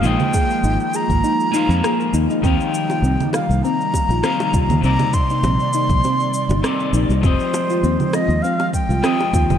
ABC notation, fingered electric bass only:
X:1
M:4/4
L:1/16
Q:"Swing 16ths" 1/4=100
K:Eb
V:1 name="Fingered electric bass" clef=bass
B,,, z3 A,,, z2 A,,, z3 F,, z2 E,, z | E,, z3 C,, z2 C,, z3 B,,, z2 C,, E,, | C,, z3 B,,, z2 B,,, z3 G,,, z2 B,,, C,, | F,,, z3 E,, z2 E,, z3 C,, z2 E,, F,,, |]